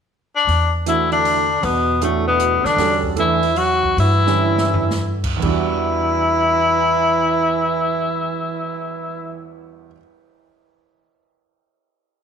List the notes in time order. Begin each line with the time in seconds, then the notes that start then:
0.36 D4
0.47 E2, open hi-hat
0.86 E3 A3 D4 E4 F#4, closed hi-hat
1.12 D3 D4, open hi-hat
1.25 open hi-hat
1.63 E2 B2 B3, open hi-hat
2.02 A2 E3 A3 D4 F#4, closed hi-hat
2.27 B2 B3
2.40 closed hi-hat
2.64 D3 D4, muted upright bass stroke, snare
2.77 E2 G3 C#4 F#4 A4, snare, open hi-hat
3.03 kick
3.16 E3 A3 D4 E4 A4, closed hi-hat
3.43 open hi-hat
3.56 F#3 F#4, open hi-hat
3.84 kick
3.97 G2 E3 E4, open hi-hat
4.27 D3 G3 C#4 E4, snare
4.58 snare
4.74 floor tom
4.91 snare
5.24 kick, crash
5.37 E2 E3
5.42 E2 E3 G3 D4 E4, kick, crash
5.49 F#4
5.78 cymbal swell